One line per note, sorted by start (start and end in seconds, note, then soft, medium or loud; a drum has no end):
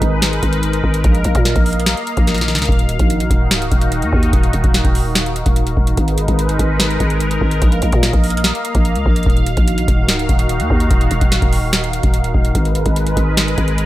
0.00 0.41 G#1 loud
0.00 1.03 G#3 medium
0.00 1.03 D#4 medium
0.00 2.65 A#4 medium
0.00 1.03 B4 medium
0.00 kick loud
0.00 closed hi-hat medium
0.22 snare loud
0.22 closed hi-hat medium
0.33 closed hi-hat medium
0.43 0.82 G#1 loud
0.43 kick medium
0.43 closed hi-hat medium
0.53 closed hi-hat medium
0.63 closed hi-hat medium
0.73 closed hi-hat medium
0.84 1.03 G#1 loud
0.84 kick medium
0.94 closed hi-hat medium
1.04 1.24 A#1 loud
1.04 2.67 A#3 medium
1.04 2.67 D#5 medium
1.04 5.94 F5 medium
1.04 kick loud
1.04 closed hi-hat medium
1.15 closed hi-hat medium
1.24 1.35 A#1 loud
1.24 closed hi-hat medium
1.35 1.55 A#2 loud
1.35 kick medium
1.35 closed hi-hat medium
1.45 snare medium
1.45 closed hi-hat medium
1.56 1.95 A#1 loud
1.56 kick loud
1.56 closed hi-hat medium
1.66 closed hi-hat soft
1.66 open hi-hat medium
1.73 closed hi-hat medium
1.80 closed hi-hat medium
1.86 snare loud
1.86 closed hi-hat medium
1.97 closed hi-hat medium
2.07 closed hi-hat medium
2.17 2.60 A#1 loud
2.17 kick loud
2.17 closed hi-hat medium
2.27 snare medium
2.27 closed hi-hat medium
2.34 snare medium
2.34 closed hi-hat medium
2.41 snare medium
2.48 snare medium
2.55 2.68 C#2 loud
2.55 snare medium
2.55 closed hi-hat medium
2.62 snare medium
2.62 closed hi-hat medium
2.69 2.98 D#1 loud
2.69 5.94 D#3 medium
2.69 5.94 D#4 medium
2.69 5.94 F#4 medium
2.69 kick loud
2.69 closed hi-hat soft
2.79 closed hi-hat medium
2.89 closed hi-hat medium
2.99 3.29 A#1 loud
2.99 kick medium
2.99 closed hi-hat medium
3.10 closed hi-hat medium
3.20 closed hi-hat medium
3.30 3.52 D#1 loud
3.30 kick loud
3.30 closed hi-hat medium
3.51 3.70 C#1 loud
3.51 snare loud
3.51 closed hi-hat medium
3.62 closed hi-hat medium
3.72 4.04 D#1 loud
3.72 kick medium
3.72 closed hi-hat medium
3.81 closed hi-hat medium
3.92 closed hi-hat medium
4.02 4.12 D#2 loud
4.02 closed hi-hat medium
4.13 4.32 D#2 loud
4.13 kick medium
4.23 closed hi-hat medium
4.33 4.53 D#1 loud
4.33 kick loud
4.33 closed hi-hat medium
4.43 closed hi-hat medium
4.53 4.64 D#1 loud
4.53 closed hi-hat medium
4.64 4.84 D#1 loud
4.64 kick loud
4.64 closed hi-hat medium
4.74 snare medium
4.74 closed hi-hat medium
4.84 5.44 D#1 loud
4.84 kick loud
4.84 closed hi-hat medium
4.95 open hi-hat medium
5.15 snare loud
5.15 closed hi-hat medium
5.26 closed hi-hat medium
5.36 closed hi-hat medium
5.46 5.76 D#1 loud
5.46 kick loud
5.46 closed hi-hat medium
5.56 closed hi-hat medium
5.67 closed hi-hat medium
5.77 5.97 D#1 loud
5.77 kick medium
5.87 closed hi-hat medium
5.97 6.27 G#1 loud
5.97 7.60 G#3 medium
5.97 7.60 D#4 medium
5.97 9.23 A#4 medium
5.97 7.60 B4 medium
5.97 kick loud
5.97 closed hi-hat medium
6.08 closed hi-hat medium
6.18 closed hi-hat medium
6.28 6.58 G#1 loud
6.28 kick medium
6.28 closed hi-hat medium
6.39 closed hi-hat medium
6.49 closed hi-hat medium
6.59 6.99 G#1 loud
6.59 kick medium
6.59 closed hi-hat medium
6.80 snare loud
6.80 closed hi-hat medium
6.91 closed hi-hat medium
7.00 7.40 G#1 loud
7.00 kick medium
7.00 closed hi-hat medium
7.10 closed hi-hat medium
7.20 closed hi-hat medium
7.31 closed hi-hat medium
7.41 7.61 G#1 loud
7.41 kick medium
7.51 closed hi-hat medium
7.62 7.82 A#1 loud
7.62 9.25 A#3 medium
7.62 9.25 D#5 medium
7.62 12.51 F5 medium
7.62 kick loud
7.62 closed hi-hat medium
7.72 closed hi-hat medium
7.82 7.92 A#1 loud
7.82 closed hi-hat medium
7.92 8.12 A#2 loud
7.92 kick medium
7.92 closed hi-hat medium
8.03 snare loud
8.03 closed hi-hat medium
8.13 8.53 A#1 loud
8.13 kick loud
8.13 closed hi-hat medium
8.24 closed hi-hat soft
8.24 open hi-hat medium
8.30 closed hi-hat medium
8.37 closed hi-hat medium
8.44 snare loud
8.44 closed hi-hat medium
8.55 closed hi-hat medium
8.65 closed hi-hat medium
8.75 8.97 A#1 loud
8.75 kick loud
8.75 closed hi-hat medium
8.85 closed hi-hat medium
8.95 9.05 C#2 loud
8.95 closed hi-hat medium
9.06 9.26 A#1 loud
9.06 kick medium
9.16 closed hi-hat medium
9.23 9.56 D#1 loud
9.23 12.52 D#3 medium
9.23 13.86 D#4 medium
9.23 12.52 F#4 medium
9.23 kick loud
9.23 closed hi-hat medium
9.30 closed hi-hat soft
9.37 closed hi-hat medium
9.46 closed hi-hat medium
9.57 9.87 A#1 loud
9.57 kick medium
9.57 closed hi-hat medium
9.68 closed hi-hat medium
9.78 closed hi-hat medium
9.88 10.10 D#1 loud
9.88 kick loud
9.88 closed hi-hat medium
10.09 10.28 C#1 loud
10.09 snare loud
10.09 closed hi-hat medium
10.19 closed hi-hat medium
10.29 10.61 D#1 loud
10.29 kick medium
10.29 closed hi-hat medium
10.39 closed hi-hat medium
10.49 closed hi-hat medium
10.60 10.70 D#2 loud
10.60 closed hi-hat medium
10.70 10.90 D#2 loud
10.70 kick medium
10.80 closed hi-hat medium
10.91 11.10 D#1 loud
10.91 kick loud
10.91 closed hi-hat medium
11.01 closed hi-hat medium
11.11 11.21 D#1 loud
11.11 closed hi-hat medium
11.21 11.41 D#1 loud
11.21 kick medium
11.21 closed hi-hat medium
11.32 snare loud
11.32 closed hi-hat medium
11.42 12.01 D#1 loud
11.42 kick loud
11.42 closed hi-hat medium
11.53 open hi-hat medium
11.73 snare loud
11.73 closed hi-hat medium
11.84 closed hi-hat medium
11.93 closed hi-hat medium
12.03 12.33 D#1 loud
12.03 kick loud
12.03 closed hi-hat medium
12.14 closed hi-hat medium
12.24 closed hi-hat medium
12.34 12.54 D#1 loud
12.34 kick medium
12.45 closed hi-hat medium
12.55 12.85 G#1 loud
12.55 13.86 G#3 medium
12.55 13.86 A#4 medium
12.55 13.86 B4 medium
12.55 kick loud
12.55 closed hi-hat medium
12.65 closed hi-hat medium
12.75 closed hi-hat medium
12.86 13.15 G#1 loud
12.86 kick medium
12.86 closed hi-hat medium
12.96 closed hi-hat medium
13.07 closed hi-hat medium
13.17 13.56 G#1 loud
13.17 kick loud
13.17 closed hi-hat medium
13.37 snare loud
13.37 closed hi-hat medium
13.48 closed hi-hat medium
13.58 13.86 G#1 loud
13.58 kick medium
13.58 closed hi-hat medium
13.68 closed hi-hat medium
13.78 closed hi-hat medium